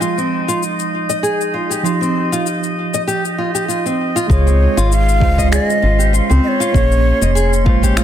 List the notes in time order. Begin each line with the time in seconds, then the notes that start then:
Already playing: F3 G#3 D#4 D#5 G5
0.01 F4, cabasa
0.18 C4, cabasa
0.48 F4, cabasa
0.63 cabasa
0.79 cabasa
1.09 D#5, cabasa
1.23 G#4, cabasa
1.41 cabasa
1.54 F4
1.70 G4, cabasa
1.83 F3 D#4 F4, cabasa
1.87 G4
2.01 C4, cabasa
2.32 F4, cabasa
2.46 cabasa
2.63 cabasa
2.94 D#5, cabasa
3.07 G4, cabasa
3.25 cabasa
3.38 F4
3.55 G4, cabasa
3.68 F4, cabasa
3.86 C4, cabasa
4.16 F4, cabasa
4.28 C#2 G#3 C#4 F4 C#5 C6, kick, cabasa
4.32 G#4
4.47 C4, cabasa
4.77 G#1 F4, cabasa
4.92 F5, cabasa
5.09 cabasa
5.20 C#2 G#3 F4, kick
5.24 C5
5.38 D#5, kick, cabasa
5.52 G#4 D5, finger snap, cabasa
5.65 D#5
5.70 cabasa
5.82 G#1 F4
5.99 G4, cabasa
6.13 F4, cabasa
6.30 C#2 C4, cabasa
6.44 D#5
6.48 C#5
6.60 F4, cabasa
6.73 A#1 A#3 C#4 G#4, kick, cabasa
6.77 C#5
6.92 cabasa
7.21 F1 D#5, cabasa
7.35 G#4, cabasa
7.53 cabasa
7.65 A#1 G#3 A#3 F4, kick
7.69 C5
7.83 G4, kick, cabasa
7.97 F4, finger snap, cabasa